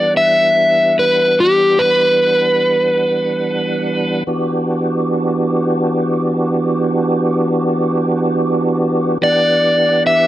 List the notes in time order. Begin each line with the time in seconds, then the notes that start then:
Already playing: E3 G3 B3 D4 D5 F#5
0.17 E5
0.99 B4
1.40 G4
1.79 B4
4.27 E3 B3 D4 F#4 G4
9.21 E3 B3 D4 G4 D5 F#5
10.07 E5